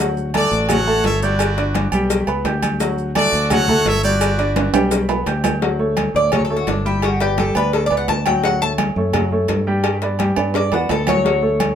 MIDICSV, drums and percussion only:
0, 0, Header, 1, 2, 480
1, 0, Start_track
1, 0, Key_signature, 2, "major"
1, 0, Tempo, 351906
1, 1904, Time_signature, 4, 2, 24, 8
1, 16027, End_track
2, 0, Start_track
2, 0, Title_t, "Drums"
2, 0, Note_on_c, 9, 63, 38
2, 0, Note_on_c, 9, 70, 93
2, 130, Note_off_c, 9, 70, 0
2, 132, Note_off_c, 9, 63, 0
2, 230, Note_on_c, 9, 70, 30
2, 234, Note_on_c, 9, 63, 36
2, 367, Note_off_c, 9, 70, 0
2, 370, Note_off_c, 9, 63, 0
2, 464, Note_on_c, 9, 66, 65
2, 464, Note_on_c, 9, 68, 115
2, 468, Note_on_c, 9, 56, 74
2, 473, Note_on_c, 9, 70, 29
2, 477, Note_on_c, 9, 63, 99
2, 601, Note_off_c, 9, 66, 0
2, 601, Note_off_c, 9, 68, 0
2, 604, Note_off_c, 9, 56, 0
2, 610, Note_off_c, 9, 70, 0
2, 613, Note_off_c, 9, 63, 0
2, 714, Note_on_c, 9, 63, 36
2, 714, Note_on_c, 9, 70, 71
2, 850, Note_off_c, 9, 63, 0
2, 851, Note_off_c, 9, 70, 0
2, 937, Note_on_c, 9, 68, 109
2, 949, Note_on_c, 9, 56, 107
2, 950, Note_on_c, 9, 70, 93
2, 955, Note_on_c, 9, 63, 34
2, 955, Note_on_c, 9, 64, 81
2, 1073, Note_off_c, 9, 68, 0
2, 1085, Note_off_c, 9, 56, 0
2, 1086, Note_off_c, 9, 70, 0
2, 1091, Note_off_c, 9, 63, 0
2, 1091, Note_off_c, 9, 64, 0
2, 1192, Note_on_c, 9, 70, 30
2, 1193, Note_on_c, 9, 63, 36
2, 1328, Note_off_c, 9, 70, 0
2, 1330, Note_off_c, 9, 63, 0
2, 1418, Note_on_c, 9, 66, 85
2, 1418, Note_on_c, 9, 68, 67
2, 1428, Note_on_c, 9, 63, 84
2, 1429, Note_on_c, 9, 56, 62
2, 1433, Note_on_c, 9, 70, 30
2, 1554, Note_off_c, 9, 66, 0
2, 1554, Note_off_c, 9, 68, 0
2, 1565, Note_off_c, 9, 56, 0
2, 1565, Note_off_c, 9, 63, 0
2, 1569, Note_off_c, 9, 70, 0
2, 1669, Note_on_c, 9, 70, 78
2, 1674, Note_on_c, 9, 63, 38
2, 1806, Note_off_c, 9, 70, 0
2, 1811, Note_off_c, 9, 63, 0
2, 1896, Note_on_c, 9, 68, 108
2, 1909, Note_on_c, 9, 70, 95
2, 1911, Note_on_c, 9, 56, 119
2, 1913, Note_on_c, 9, 63, 38
2, 2033, Note_off_c, 9, 68, 0
2, 2045, Note_off_c, 9, 70, 0
2, 2047, Note_off_c, 9, 56, 0
2, 2049, Note_off_c, 9, 63, 0
2, 2148, Note_on_c, 9, 70, 28
2, 2151, Note_on_c, 9, 63, 35
2, 2153, Note_on_c, 9, 56, 69
2, 2284, Note_off_c, 9, 70, 0
2, 2287, Note_off_c, 9, 63, 0
2, 2289, Note_off_c, 9, 56, 0
2, 2381, Note_on_c, 9, 66, 69
2, 2381, Note_on_c, 9, 68, 91
2, 2386, Note_on_c, 9, 70, 32
2, 2391, Note_on_c, 9, 56, 78
2, 2391, Note_on_c, 9, 63, 104
2, 2517, Note_off_c, 9, 66, 0
2, 2517, Note_off_c, 9, 68, 0
2, 2523, Note_off_c, 9, 70, 0
2, 2527, Note_off_c, 9, 63, 0
2, 2528, Note_off_c, 9, 56, 0
2, 2618, Note_on_c, 9, 68, 105
2, 2624, Note_on_c, 9, 70, 78
2, 2754, Note_off_c, 9, 68, 0
2, 2760, Note_off_c, 9, 70, 0
2, 2866, Note_on_c, 9, 56, 111
2, 2868, Note_on_c, 9, 70, 98
2, 2869, Note_on_c, 9, 63, 35
2, 3003, Note_off_c, 9, 56, 0
2, 3004, Note_off_c, 9, 70, 0
2, 3006, Note_off_c, 9, 63, 0
2, 3099, Note_on_c, 9, 68, 93
2, 3108, Note_on_c, 9, 70, 30
2, 3110, Note_on_c, 9, 63, 38
2, 3235, Note_off_c, 9, 68, 0
2, 3244, Note_off_c, 9, 70, 0
2, 3247, Note_off_c, 9, 63, 0
2, 3341, Note_on_c, 9, 66, 90
2, 3341, Note_on_c, 9, 68, 83
2, 3342, Note_on_c, 9, 56, 65
2, 3345, Note_on_c, 9, 70, 31
2, 3351, Note_on_c, 9, 63, 34
2, 3477, Note_off_c, 9, 66, 0
2, 3477, Note_off_c, 9, 68, 0
2, 3478, Note_off_c, 9, 56, 0
2, 3482, Note_off_c, 9, 70, 0
2, 3487, Note_off_c, 9, 63, 0
2, 3581, Note_on_c, 9, 68, 117
2, 3584, Note_on_c, 9, 70, 80
2, 3587, Note_on_c, 9, 56, 69
2, 3587, Note_on_c, 9, 63, 91
2, 3717, Note_off_c, 9, 68, 0
2, 3721, Note_off_c, 9, 70, 0
2, 3723, Note_off_c, 9, 56, 0
2, 3724, Note_off_c, 9, 63, 0
2, 3821, Note_on_c, 9, 70, 91
2, 3823, Note_on_c, 9, 63, 34
2, 3824, Note_on_c, 9, 56, 109
2, 3958, Note_off_c, 9, 70, 0
2, 3959, Note_off_c, 9, 63, 0
2, 3960, Note_off_c, 9, 56, 0
2, 4066, Note_on_c, 9, 70, 28
2, 4070, Note_on_c, 9, 63, 36
2, 4202, Note_off_c, 9, 70, 0
2, 4206, Note_off_c, 9, 63, 0
2, 4301, Note_on_c, 9, 66, 62
2, 4301, Note_on_c, 9, 68, 112
2, 4303, Note_on_c, 9, 70, 30
2, 4304, Note_on_c, 9, 56, 71
2, 4309, Note_on_c, 9, 63, 104
2, 4438, Note_off_c, 9, 66, 0
2, 4438, Note_off_c, 9, 68, 0
2, 4440, Note_off_c, 9, 70, 0
2, 4441, Note_off_c, 9, 56, 0
2, 4445, Note_off_c, 9, 63, 0
2, 4544, Note_on_c, 9, 70, 74
2, 4546, Note_on_c, 9, 63, 36
2, 4681, Note_off_c, 9, 70, 0
2, 4683, Note_off_c, 9, 63, 0
2, 4778, Note_on_c, 9, 68, 115
2, 4782, Note_on_c, 9, 56, 108
2, 4785, Note_on_c, 9, 70, 95
2, 4788, Note_on_c, 9, 63, 30
2, 4788, Note_on_c, 9, 64, 84
2, 4915, Note_off_c, 9, 68, 0
2, 4918, Note_off_c, 9, 56, 0
2, 4922, Note_off_c, 9, 70, 0
2, 4924, Note_off_c, 9, 63, 0
2, 4924, Note_off_c, 9, 64, 0
2, 5022, Note_on_c, 9, 63, 38
2, 5022, Note_on_c, 9, 64, 80
2, 5026, Note_on_c, 9, 70, 30
2, 5159, Note_off_c, 9, 63, 0
2, 5159, Note_off_c, 9, 64, 0
2, 5163, Note_off_c, 9, 70, 0
2, 5260, Note_on_c, 9, 66, 91
2, 5260, Note_on_c, 9, 68, 74
2, 5261, Note_on_c, 9, 63, 88
2, 5262, Note_on_c, 9, 56, 65
2, 5262, Note_on_c, 9, 70, 31
2, 5396, Note_off_c, 9, 66, 0
2, 5396, Note_off_c, 9, 68, 0
2, 5397, Note_off_c, 9, 63, 0
2, 5398, Note_off_c, 9, 70, 0
2, 5399, Note_off_c, 9, 56, 0
2, 5500, Note_on_c, 9, 63, 37
2, 5501, Note_on_c, 9, 70, 82
2, 5636, Note_off_c, 9, 63, 0
2, 5637, Note_off_c, 9, 70, 0
2, 5742, Note_on_c, 9, 68, 106
2, 5742, Note_on_c, 9, 70, 94
2, 5743, Note_on_c, 9, 56, 111
2, 5744, Note_on_c, 9, 63, 35
2, 5878, Note_off_c, 9, 70, 0
2, 5879, Note_off_c, 9, 68, 0
2, 5880, Note_off_c, 9, 56, 0
2, 5881, Note_off_c, 9, 63, 0
2, 5979, Note_on_c, 9, 70, 32
2, 5985, Note_on_c, 9, 63, 35
2, 5986, Note_on_c, 9, 56, 68
2, 6116, Note_off_c, 9, 70, 0
2, 6121, Note_off_c, 9, 63, 0
2, 6123, Note_off_c, 9, 56, 0
2, 6221, Note_on_c, 9, 63, 95
2, 6223, Note_on_c, 9, 65, 103
2, 6223, Note_on_c, 9, 68, 83
2, 6224, Note_on_c, 9, 70, 30
2, 6226, Note_on_c, 9, 56, 74
2, 6357, Note_off_c, 9, 63, 0
2, 6360, Note_off_c, 9, 65, 0
2, 6360, Note_off_c, 9, 68, 0
2, 6360, Note_off_c, 9, 70, 0
2, 6362, Note_off_c, 9, 56, 0
2, 6461, Note_on_c, 9, 65, 104
2, 6461, Note_on_c, 9, 68, 115
2, 6463, Note_on_c, 9, 63, 38
2, 6463, Note_on_c, 9, 70, 77
2, 6597, Note_off_c, 9, 65, 0
2, 6597, Note_off_c, 9, 68, 0
2, 6599, Note_off_c, 9, 63, 0
2, 6599, Note_off_c, 9, 70, 0
2, 6699, Note_on_c, 9, 65, 75
2, 6701, Note_on_c, 9, 70, 95
2, 6702, Note_on_c, 9, 56, 114
2, 6705, Note_on_c, 9, 63, 34
2, 6835, Note_off_c, 9, 65, 0
2, 6838, Note_off_c, 9, 56, 0
2, 6838, Note_off_c, 9, 70, 0
2, 6842, Note_off_c, 9, 63, 0
2, 6940, Note_on_c, 9, 66, 100
2, 6940, Note_on_c, 9, 68, 85
2, 6943, Note_on_c, 9, 63, 40
2, 6946, Note_on_c, 9, 70, 30
2, 7076, Note_off_c, 9, 66, 0
2, 7076, Note_off_c, 9, 68, 0
2, 7079, Note_off_c, 9, 63, 0
2, 7083, Note_off_c, 9, 70, 0
2, 7181, Note_on_c, 9, 63, 37
2, 7181, Note_on_c, 9, 66, 73
2, 7181, Note_on_c, 9, 68, 85
2, 7187, Note_on_c, 9, 56, 67
2, 7190, Note_on_c, 9, 70, 33
2, 7317, Note_off_c, 9, 63, 0
2, 7317, Note_off_c, 9, 66, 0
2, 7317, Note_off_c, 9, 68, 0
2, 7323, Note_off_c, 9, 56, 0
2, 7326, Note_off_c, 9, 70, 0
2, 7418, Note_on_c, 9, 66, 113
2, 7418, Note_on_c, 9, 68, 117
2, 7420, Note_on_c, 9, 63, 93
2, 7426, Note_on_c, 9, 56, 67
2, 7426, Note_on_c, 9, 70, 76
2, 7554, Note_off_c, 9, 66, 0
2, 7554, Note_off_c, 9, 68, 0
2, 7557, Note_off_c, 9, 63, 0
2, 7562, Note_off_c, 9, 70, 0
2, 7563, Note_off_c, 9, 56, 0
2, 7660, Note_on_c, 9, 63, 34
2, 7668, Note_on_c, 9, 56, 112
2, 7796, Note_off_c, 9, 63, 0
2, 7804, Note_off_c, 9, 56, 0
2, 7903, Note_on_c, 9, 63, 33
2, 8040, Note_off_c, 9, 63, 0
2, 8139, Note_on_c, 9, 66, 62
2, 8139, Note_on_c, 9, 68, 106
2, 8141, Note_on_c, 9, 63, 99
2, 8148, Note_on_c, 9, 56, 69
2, 8275, Note_off_c, 9, 66, 0
2, 8275, Note_off_c, 9, 68, 0
2, 8278, Note_off_c, 9, 63, 0
2, 8284, Note_off_c, 9, 56, 0
2, 8384, Note_on_c, 9, 63, 33
2, 8520, Note_off_c, 9, 63, 0
2, 8618, Note_on_c, 9, 68, 106
2, 8623, Note_on_c, 9, 63, 31
2, 8623, Note_on_c, 9, 64, 80
2, 8628, Note_on_c, 9, 56, 108
2, 8754, Note_off_c, 9, 68, 0
2, 8759, Note_off_c, 9, 63, 0
2, 8759, Note_off_c, 9, 64, 0
2, 8765, Note_off_c, 9, 56, 0
2, 8862, Note_on_c, 9, 63, 37
2, 8998, Note_off_c, 9, 63, 0
2, 9098, Note_on_c, 9, 66, 85
2, 9098, Note_on_c, 9, 68, 69
2, 9106, Note_on_c, 9, 63, 82
2, 9110, Note_on_c, 9, 56, 67
2, 9235, Note_off_c, 9, 66, 0
2, 9235, Note_off_c, 9, 68, 0
2, 9242, Note_off_c, 9, 63, 0
2, 9247, Note_off_c, 9, 56, 0
2, 9345, Note_on_c, 9, 63, 36
2, 9482, Note_off_c, 9, 63, 0
2, 9580, Note_on_c, 9, 68, 98
2, 9584, Note_on_c, 9, 63, 34
2, 9590, Note_on_c, 9, 56, 111
2, 9716, Note_off_c, 9, 68, 0
2, 9721, Note_off_c, 9, 63, 0
2, 9726, Note_off_c, 9, 56, 0
2, 9824, Note_on_c, 9, 63, 35
2, 9827, Note_on_c, 9, 56, 69
2, 9961, Note_off_c, 9, 63, 0
2, 9963, Note_off_c, 9, 56, 0
2, 10061, Note_on_c, 9, 66, 64
2, 10061, Note_on_c, 9, 68, 80
2, 10065, Note_on_c, 9, 56, 70
2, 10065, Note_on_c, 9, 63, 101
2, 10197, Note_off_c, 9, 66, 0
2, 10197, Note_off_c, 9, 68, 0
2, 10202, Note_off_c, 9, 56, 0
2, 10202, Note_off_c, 9, 63, 0
2, 10299, Note_on_c, 9, 68, 101
2, 10304, Note_on_c, 9, 63, 34
2, 10435, Note_off_c, 9, 68, 0
2, 10441, Note_off_c, 9, 63, 0
2, 10546, Note_on_c, 9, 63, 31
2, 10548, Note_on_c, 9, 56, 104
2, 10683, Note_off_c, 9, 63, 0
2, 10684, Note_off_c, 9, 56, 0
2, 10782, Note_on_c, 9, 68, 82
2, 10787, Note_on_c, 9, 63, 36
2, 10919, Note_off_c, 9, 68, 0
2, 10924, Note_off_c, 9, 63, 0
2, 11023, Note_on_c, 9, 66, 90
2, 11023, Note_on_c, 9, 68, 84
2, 11025, Note_on_c, 9, 56, 63
2, 11026, Note_on_c, 9, 63, 35
2, 11160, Note_off_c, 9, 66, 0
2, 11160, Note_off_c, 9, 68, 0
2, 11161, Note_off_c, 9, 56, 0
2, 11163, Note_off_c, 9, 63, 0
2, 11261, Note_on_c, 9, 68, 112
2, 11263, Note_on_c, 9, 63, 83
2, 11268, Note_on_c, 9, 56, 67
2, 11398, Note_off_c, 9, 68, 0
2, 11399, Note_off_c, 9, 63, 0
2, 11405, Note_off_c, 9, 56, 0
2, 11506, Note_on_c, 9, 56, 107
2, 11642, Note_off_c, 9, 56, 0
2, 11741, Note_on_c, 9, 63, 34
2, 11878, Note_off_c, 9, 63, 0
2, 11979, Note_on_c, 9, 66, 61
2, 11979, Note_on_c, 9, 68, 114
2, 11981, Note_on_c, 9, 56, 73
2, 11981, Note_on_c, 9, 63, 103
2, 12116, Note_off_c, 9, 66, 0
2, 12116, Note_off_c, 9, 68, 0
2, 12117, Note_off_c, 9, 56, 0
2, 12118, Note_off_c, 9, 63, 0
2, 12221, Note_on_c, 9, 63, 33
2, 12358, Note_off_c, 9, 63, 0
2, 12459, Note_on_c, 9, 63, 34
2, 12459, Note_on_c, 9, 64, 82
2, 12460, Note_on_c, 9, 68, 108
2, 12463, Note_on_c, 9, 56, 105
2, 12595, Note_off_c, 9, 63, 0
2, 12595, Note_off_c, 9, 64, 0
2, 12596, Note_off_c, 9, 68, 0
2, 12600, Note_off_c, 9, 56, 0
2, 12705, Note_on_c, 9, 63, 37
2, 12841, Note_off_c, 9, 63, 0
2, 12935, Note_on_c, 9, 66, 80
2, 12935, Note_on_c, 9, 68, 74
2, 12942, Note_on_c, 9, 56, 66
2, 12945, Note_on_c, 9, 63, 80
2, 13071, Note_off_c, 9, 66, 0
2, 13071, Note_off_c, 9, 68, 0
2, 13078, Note_off_c, 9, 56, 0
2, 13081, Note_off_c, 9, 63, 0
2, 13186, Note_on_c, 9, 63, 39
2, 13323, Note_off_c, 9, 63, 0
2, 13417, Note_on_c, 9, 68, 101
2, 13418, Note_on_c, 9, 56, 116
2, 13429, Note_on_c, 9, 63, 33
2, 13553, Note_off_c, 9, 68, 0
2, 13555, Note_off_c, 9, 56, 0
2, 13565, Note_off_c, 9, 63, 0
2, 13665, Note_on_c, 9, 56, 63
2, 13666, Note_on_c, 9, 63, 37
2, 13801, Note_off_c, 9, 56, 0
2, 13802, Note_off_c, 9, 63, 0
2, 13897, Note_on_c, 9, 66, 61
2, 13897, Note_on_c, 9, 68, 87
2, 13908, Note_on_c, 9, 56, 71
2, 13911, Note_on_c, 9, 63, 94
2, 14034, Note_off_c, 9, 66, 0
2, 14034, Note_off_c, 9, 68, 0
2, 14045, Note_off_c, 9, 56, 0
2, 14047, Note_off_c, 9, 63, 0
2, 14137, Note_on_c, 9, 65, 73
2, 14137, Note_on_c, 9, 68, 110
2, 14151, Note_on_c, 9, 63, 35
2, 14273, Note_off_c, 9, 65, 0
2, 14273, Note_off_c, 9, 68, 0
2, 14288, Note_off_c, 9, 63, 0
2, 14377, Note_on_c, 9, 65, 88
2, 14389, Note_on_c, 9, 63, 31
2, 14390, Note_on_c, 9, 56, 104
2, 14513, Note_off_c, 9, 65, 0
2, 14525, Note_off_c, 9, 63, 0
2, 14527, Note_off_c, 9, 56, 0
2, 14618, Note_on_c, 9, 66, 94
2, 14618, Note_on_c, 9, 68, 86
2, 14630, Note_on_c, 9, 63, 37
2, 14755, Note_off_c, 9, 66, 0
2, 14755, Note_off_c, 9, 68, 0
2, 14767, Note_off_c, 9, 63, 0
2, 14858, Note_on_c, 9, 66, 98
2, 14858, Note_on_c, 9, 68, 80
2, 14867, Note_on_c, 9, 56, 63
2, 14873, Note_on_c, 9, 63, 36
2, 14995, Note_off_c, 9, 66, 0
2, 14995, Note_off_c, 9, 68, 0
2, 15004, Note_off_c, 9, 56, 0
2, 15009, Note_off_c, 9, 63, 0
2, 15097, Note_on_c, 9, 66, 85
2, 15097, Note_on_c, 9, 68, 116
2, 15111, Note_on_c, 9, 63, 90
2, 15115, Note_on_c, 9, 56, 73
2, 15233, Note_off_c, 9, 66, 0
2, 15233, Note_off_c, 9, 68, 0
2, 15248, Note_off_c, 9, 63, 0
2, 15251, Note_off_c, 9, 56, 0
2, 15353, Note_on_c, 9, 63, 35
2, 15354, Note_on_c, 9, 56, 107
2, 15489, Note_off_c, 9, 63, 0
2, 15490, Note_off_c, 9, 56, 0
2, 15590, Note_on_c, 9, 63, 35
2, 15726, Note_off_c, 9, 63, 0
2, 15823, Note_on_c, 9, 66, 62
2, 15823, Note_on_c, 9, 68, 111
2, 15824, Note_on_c, 9, 63, 100
2, 15834, Note_on_c, 9, 56, 67
2, 15959, Note_off_c, 9, 66, 0
2, 15959, Note_off_c, 9, 68, 0
2, 15960, Note_off_c, 9, 63, 0
2, 15971, Note_off_c, 9, 56, 0
2, 16027, End_track
0, 0, End_of_file